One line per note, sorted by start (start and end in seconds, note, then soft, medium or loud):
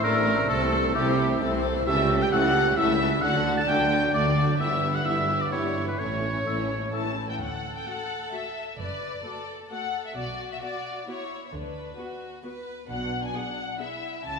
0.00 0.44 A1 medium
0.00 0.44 A2 medium
0.00 1.83 A3 medium
0.00 0.15 A3 medium
0.00 0.20 E4 medium
0.00 0.49 A#4 loud
0.00 1.82 E6 medium
0.04 0.45 A1 medium
0.04 0.20 A3 medium
0.04 0.15 C4 medium
0.04 0.52 D4 medium
0.04 0.15 A4 medium
0.16 0.27 E3 medium
0.16 0.27 C4 medium
0.16 0.27 E4 medium
0.16 0.27 C5 medium
0.27 0.39 A3 medium
0.27 0.38 C4 medium
0.27 0.38 A4 medium
0.38 0.50 E3 medium
0.38 0.50 C4 medium
0.38 0.50 E4 medium
0.38 0.50 C5 medium
0.48 0.90 C2 medium
0.48 0.90 C3 medium
0.48 0.60 A3 medium
0.48 0.95 C4 medium
0.48 0.61 C4 medium
0.48 0.94 A4 medium
0.48 0.94 A4 loud
0.48 0.61 A4 medium
0.61 0.73 E3 medium
0.61 0.73 C4 medium
0.61 0.73 E4 medium
0.61 0.73 C5 medium
0.72 0.84 A3 medium
0.72 0.84 C4 medium
0.72 0.84 A4 medium
0.84 0.95 E3 medium
0.84 0.95 C4 medium
0.84 0.96 E4 medium
0.84 0.96 C5 medium
0.94 1.36 C2 medium
0.94 1.36 C3 medium
0.94 1.06 A3 medium
0.94 1.12 A3 medium
0.94 1.06 C4 medium
0.94 1.12 E4 medium
0.94 1.43 E4 medium
0.94 1.40 G4 medium
0.94 1.40 G4 loud
0.94 1.06 A4 medium
1.07 1.18 E3 medium
1.07 1.18 C4 medium
1.07 1.19 E4 medium
1.07 1.19 C5 medium
1.18 1.30 A3 medium
1.18 1.30 C4 medium
1.18 1.30 A4 medium
1.30 1.41 E3 medium
1.30 1.41 C4 medium
1.30 1.41 E4 medium
1.30 1.41 C5 medium
1.41 1.81 C2 medium
1.41 1.82 C2 medium
1.41 1.82 C3 medium
1.41 1.52 A3 medium
1.41 1.58 A3 medium
1.41 1.87 C4 medium
1.41 1.52 C4 medium
1.41 1.58 E4 medium
1.41 1.52 A4 medium
1.53 1.64 E3 medium
1.53 1.64 C4 medium
1.53 1.64 E4 medium
1.53 1.64 C5 medium
1.64 1.76 A3 medium
1.64 1.76 C4 medium
1.64 1.76 A4 medium
1.77 1.86 E3 medium
1.77 1.87 C4 medium
1.77 1.88 E4 medium
1.77 1.88 C5 medium
1.86 2.27 C#2 medium
1.86 2.28 C#2 loud
1.86 2.27 C#3 medium
1.86 1.98 E3 medium
1.86 1.98 A3 medium
1.86 1.98 C#4 medium
1.86 2.79 G4 loud
1.86 1.98 A4 medium
1.86 2.18 E5 medium
1.86 2.24 E5 loud
1.98 2.10 G3 medium
1.98 2.10 C#4 medium
1.98 2.10 E4 medium
1.98 2.11 G4 medium
2.09 2.21 E3 medium
2.09 2.21 A3 medium
2.09 2.22 C#4 medium
2.09 2.22 A4 medium
2.20 2.32 G3 medium
2.20 2.33 C#4 medium
2.20 2.33 E4 medium
2.20 2.33 G4 medium
2.20 2.32 G5 medium
2.20 2.31 G5 loud
2.32 2.72 C#2 medium
2.32 2.73 C#2 medium
2.32 2.72 C#3 medium
2.32 2.43 E3 medium
2.32 2.48 A3 medium
2.32 2.49 A3 medium
2.32 2.43 A3 medium
2.32 2.43 C#4 medium
2.32 2.49 E4 medium
2.32 2.44 A4 medium
2.32 2.78 F#5 loud
2.32 2.77 F#5 loud
2.32 2.40 E6 medium
2.44 2.56 G3 medium
2.44 2.56 C#4 medium
2.44 2.56 E4 medium
2.44 2.56 G4 medium
2.55 2.67 E3 medium
2.55 2.67 A3 medium
2.55 2.68 C#4 medium
2.55 2.68 A4 medium
2.67 2.78 G3 medium
2.67 2.78 C#4 medium
2.67 2.79 E4 medium
2.67 2.79 G4 medium
2.77 3.11 C#2 medium
2.77 3.18 C#2 medium
2.77 3.18 C#3 medium
2.77 2.88 E3 medium
2.77 2.93 A3 medium
2.77 2.89 A3 medium
2.77 2.95 A3 medium
2.77 2.89 C#4 medium
2.77 3.23 E4 medium
2.77 2.95 E4 medium
2.77 2.90 A4 medium
2.77 3.23 E5 loud
2.77 3.22 E5 loud
2.77 2.86 E6 medium
2.89 3.00 G3 medium
2.89 3.01 C#4 medium
2.89 3.02 E4 medium
2.89 3.02 G4 medium
3.00 3.12 E3 medium
3.00 3.12 A3 medium
3.00 3.13 C#4 medium
3.00 3.13 A4 medium
3.11 3.23 G3 medium
3.11 3.23 C#4 medium
3.11 3.24 E4 medium
3.11 3.24 G4 medium
3.22 3.63 D2 medium
3.22 3.63 D2 loud
3.22 3.63 D3 medium
3.22 3.34 A3 medium
3.22 4.30 D4 loud
3.22 3.35 F#4 medium
3.22 3.35 A4 medium
3.22 3.57 F#5 loud
3.34 3.46 F#3 medium
3.34 3.47 D4 medium
3.34 3.46 F#4 medium
3.45 3.57 A3 medium
3.45 3.57 F#4 medium
3.45 3.58 A4 medium
3.57 3.69 F#3 medium
3.57 3.69 D4 medium
3.57 3.69 F#4 medium
3.57 3.69 A5 loud
3.57 3.63 A5 loud
3.68 4.09 D2 medium
3.68 4.09 D3 medium
3.68 3.84 A3 medium
3.68 3.80 A3 medium
3.68 3.85 A3 medium
3.68 3.85 D4 medium
3.68 3.80 F#4 medium
3.68 3.80 A4 medium
3.68 4.13 G5 loud
3.68 4.14 G5 loud
3.68 3.77 D6 medium
3.81 3.92 F#3 medium
3.81 3.92 D4 medium
3.81 3.92 F#4 medium
3.92 4.03 A3 medium
3.92 4.04 F#4 medium
3.92 4.04 A4 medium
4.03 4.15 F#3 medium
4.03 4.15 D4 medium
4.03 4.15 F#4 medium
4.13 4.54 D2 medium
4.13 4.55 D2 medium
4.13 4.54 D3 medium
4.13 4.30 A3 medium
4.13 4.31 A3 medium
4.13 4.25 A3 medium
4.13 4.31 D4 medium
4.13 4.26 F#4 medium
4.13 4.26 A4 medium
4.13 4.58 D5 medium
4.13 4.59 D5 loud
4.13 4.22 D6 medium
4.26 4.37 F#3 medium
4.26 4.38 D4 medium
4.26 4.38 F#4 medium
4.37 4.48 A3 medium
4.37 4.49 F#4 medium
4.37 4.50 A4 medium
4.48 4.59 F#3 medium
4.48 4.61 D4 medium
4.48 4.61 F#4 medium
4.58 5.00 G1 medium
4.58 5.00 G2 medium
4.58 4.70 E3 medium
4.58 4.70 B3 medium
4.58 5.48 B3 medium
4.58 4.71 E4 medium
4.58 4.71 G4 medium
4.58 4.92 E5 medium
4.58 4.97 E5 loud
4.70 4.82 G3 medium
4.70 4.82 E4 medium
4.70 4.82 G4 medium
4.81 4.93 E3 medium
4.81 4.93 B3 medium
4.81 4.94 E4 medium
4.81 4.94 G4 medium
4.93 5.05 G3 medium
4.93 5.05 E4 medium
4.93 5.05 G4 medium
4.93 5.05 F#5 medium
4.93 5.07 F#5 medium
5.04 5.46 G1 medium
5.04 5.47 G1 medium
5.04 5.46 G2 medium
5.04 5.16 E3 medium
5.04 5.21 B3 medium
5.04 5.22 B3 medium
5.04 5.16 B3 medium
5.04 5.22 E4 medium
5.04 5.16 E4 medium
5.04 5.17 G4 medium
5.04 5.40 E5 medium
5.04 5.43 E5 loud
5.04 5.13 E6 medium
5.17 5.29 G3 medium
5.17 5.28 E4 medium
5.17 5.28 G4 medium
5.29 5.40 E3 medium
5.29 5.40 B3 medium
5.29 5.39 E4 medium
5.29 5.39 G4 medium
5.40 5.52 G3 medium
5.40 5.50 E4 medium
5.40 5.51 G4 medium
5.40 5.52 D5 medium
5.51 5.93 G1 medium
5.51 5.94 G1 medium
5.51 5.93 G2 medium
5.51 5.63 E3 medium
5.51 5.67 B3 medium
5.51 5.63 B3 medium
5.51 5.68 B3 medium
5.51 5.67 E4 medium
5.51 5.62 E4 medium
5.51 5.98 E4 medium
5.51 5.62 G4 medium
5.51 5.86 C#5 medium
5.51 5.60 E6 medium
5.63 5.75 G3 medium
5.63 5.74 E4 soft
5.63 5.74 G4 medium
5.75 5.87 E3 medium
5.75 5.87 B3 medium
5.75 5.86 E4 medium
5.75 5.85 G4 medium
5.86 5.99 G3 soft
5.86 5.98 E4 soft
5.86 5.98 G4 soft
5.86 5.98 B4 medium
5.86 6.01 B4 medium
5.98 6.40 A1 medium
5.98 6.41 A1 medium
5.98 6.40 A2 medium
5.98 6.10 A3 medium
5.98 6.10 C#4 medium
5.98 7.14 C#4 medium
5.98 6.10 E4 medium
5.98 6.90 C#5 medium
5.98 7.17 C#5 medium
6.10 6.22 E3 medium
6.10 6.22 C#4 medium
6.10 6.21 E4 soft
6.22 6.34 A3 medium
6.22 6.33 C#4 medium
6.22 6.33 E4 medium
6.33 6.45 E3 soft
6.33 6.45 C#4 soft
6.33 6.46 C#4 soft
6.33 6.46 E4 soft
6.45 6.87 A1 medium
6.45 6.88 A1 medium
6.45 6.87 A2 medium
6.45 6.56 A3 medium
6.45 6.61 A3 soft
6.45 6.61 A3 medium
6.45 6.57 C#4 soft
6.45 6.61 E4 medium
6.45 6.57 E4 soft
6.45 6.55 E6 medium
6.58 6.69 E3 soft
6.58 6.69 C#4 soft
6.58 6.70 C#4 medium
6.58 6.70 E4 medium
6.69 6.81 A3 soft
6.69 6.81 C#4 soft
6.69 6.81 E4 soft
6.81 6.92 E3 soft
6.81 6.92 C#4 soft
6.81 6.92 E4 soft
6.92 7.34 A1 medium
6.92 7.34 A2 medium
6.92 7.08 A3 medium
6.92 7.03 A3 soft
6.92 7.09 A3 medium
6.92 7.04 C#4 soft
6.92 7.09 E4 medium
6.92 7.04 E4 soft
6.92 7.26 A5 medium
6.92 7.02 E6 soft
7.04 7.16 E3 soft
7.04 7.16 C#4 soft
7.04 7.16 E4 soft
7.16 7.28 A3 soft
7.16 7.28 C#4 soft
7.16 7.28 E4 soft
7.28 7.40 E3 soft
7.28 7.40 C#4 soft
7.28 7.40 E4 soft
7.28 7.40 G5 medium
7.40 7.76 D2 medium
7.40 7.77 D2 medium
7.40 8.75 A4 medium
7.40 7.74 F#5 medium
7.76 7.87 G5 medium
7.87 7.95 A3 soft
7.87 7.95 F#4 soft
7.87 8.33 F#5 medium
8.32 8.40 A3 soft
8.32 8.40 F#4 soft
8.32 8.78 E5 medium
8.79 9.15 F#1 medium
8.79 9.15 F#2 medium
8.79 9.24 B4 medium
8.79 9.47 D5 medium
9.24 9.32 A3 soft
9.24 9.33 F#4 soft
9.24 9.70 A4 medium
9.71 9.79 A3 soft
9.71 9.79 F#4 soft
9.71 10.16 A4 medium
9.71 10.02 F#5 medium
10.07 10.17 E5 medium
10.16 10.53 B1 medium
10.16 10.53 B2 medium
10.16 11.06 F#4 medium
10.16 10.50 D5 medium
10.52 10.56 E5 medium
10.63 10.71 B3 soft
10.63 10.71 F#4 soft
10.63 11.07 D5 medium
11.08 11.16 B3 soft
11.08 11.53 E4 medium
11.08 11.16 F#4 soft
11.08 11.45 C#5 medium
11.47 11.53 C#5 soft
11.53 11.89 D2 medium
11.53 11.89 D3 medium
11.53 11.98 D4 medium
11.53 12.22 B4 medium
11.99 12.07 B3 soft
11.99 12.43 F#4 medium
11.99 12.07 F#4 soft
12.44 12.53 B3 soft
12.44 12.52 F#4 soft
12.44 12.89 B4 medium
12.89 13.27 B1 medium
12.89 13.27 B2 medium
12.89 13.78 D4 medium
12.89 13.21 F#5 medium
13.25 13.35 G#5 medium
13.34 13.42 B3 soft
13.34 13.42 G#4 medium
13.34 13.80 F#5 medium
13.79 13.87 B3 soft
13.79 14.39 E4 medium
13.79 13.87 G#4 soft
13.79 14.25 E5 medium
14.25 14.39 C#2 medium
14.25 14.39 C#3 medium
14.25 14.39 A5 medium